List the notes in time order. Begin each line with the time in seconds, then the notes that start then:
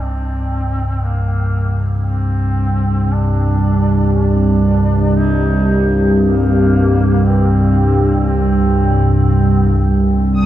Already playing: C2 G2
0.01 C4
1.04 A#3
2.06 C4
3.12 D4
4.14 D4
5.16 D#4
6.21 A#3
7.24 C4
8.27 C4
10.31 D4 D#6